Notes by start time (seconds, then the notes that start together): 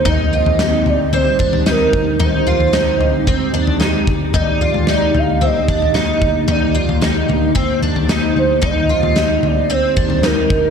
Already playing: C4 D#4 G4
0.05 D#2 G3 D#4 D#5, kick, floor tom
0.33 F4
0.45 D#2, floor tom
0.59 D#4, snare
0.86 D2 D5, floor tom
1.13 C4 C5, floor tom
1.39 D#2 D4, kick
1.53 floor tom
1.66 D#4, snare
1.70 A#4
1.93 D2, kick
2.19 D#2 G#3 D#4, floor tom
2.24 C5
2.47 F4
2.60 D#2, floor tom
2.73 D#4, snare
3.00 D2, floor tom
3.27 C4, kick
3.54 D#2 D4
3.67 floor tom
3.80 D#4, snare
4.07 D2, kick
4.34 D#2 A#3 D#4, kick, floor tom
4.40 D5
4.61 F4
4.74 D#2, floor tom
4.87 D#4, snare
5.15 D2, floor tom
5.19 F5
5.41 C4 D#5, floor tom
5.68 D#2 D4, kick
5.82 floor tom
5.94 D#4, snare
6.22 D2, kick
6.48 D#2 D#4 D5, floor tom
6.75 F4
6.89 D#2, floor tom
7.01 D#4, snare
7.29 D2, floor tom
7.55 C4, kick
7.82 D#2 D4
7.96 floor tom
8.09 D#4, snare
8.36 D2 C5
8.61 D#2 G3 C4 D#4 G4 D#5, kick, floor tom
8.89 F4
9.03 D#2, floor tom
9.16 D#4, snare
9.43 D2, floor tom
9.47 D5
9.70 C4 C5
9.96 D#2 D4, kick
10.10 floor tom
10.23 D#4 A#4, snare
10.50 D2, kick